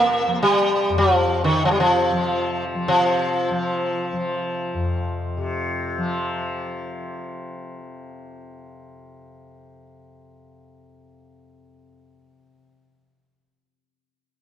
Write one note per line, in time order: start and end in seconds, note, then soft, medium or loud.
0.00 0.89 F2 medium
0.00 1.51 C3 medium
0.00 0.27 F3 medium
0.00 0.38 A#3 medium
0.27 2.12 F3 medium
0.43 0.98 G3 medium
0.89 4.74 F2 medium
0.98 1.44 F3 medium
1.44 1.65 D#3 medium
1.51 2.87 C3 medium
1.65 1.71 F3 medium
1.71 1.79 G3 medium
1.80 2.64 F3 medium
2.12 2.75 F3 medium
2.75 3.50 F3 medium
2.87 5.37 C3 medium
2.87 7.79 F3 medium
3.50 4.13 F3 medium
4.13 5.98 F3 medium
4.74 11.89 F2 medium
5.37 12.52 C3 medium
5.98 12.99 F3 medium